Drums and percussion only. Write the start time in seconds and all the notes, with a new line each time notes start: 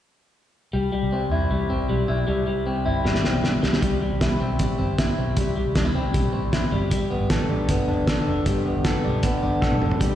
3.06 snare
3.15 snare
3.24 snare
3.44 snare
3.63 snare
3.73 snare
3.82 kick, closed hi-hat
4.21 kick, snare, closed hi-hat
4.59 kick, closed hi-hat
4.98 kick, snare, closed hi-hat
5.37 kick, closed hi-hat
5.75 kick, snare, closed hi-hat
6.14 kick, closed hi-hat
6.53 kick, snare, closed hi-hat
6.91 kick, closed hi-hat
7.30 kick, snare, closed hi-hat
7.69 kick, closed hi-hat
8.07 kick, snare, closed hi-hat
8.46 kick, closed hi-hat
8.84 kick, snare, closed hi-hat
9.23 kick, closed hi-hat
9.62 kick, snare
9.72 high tom
9.82 mid tom
9.91 floor tom
10.01 kick, closed hi-hat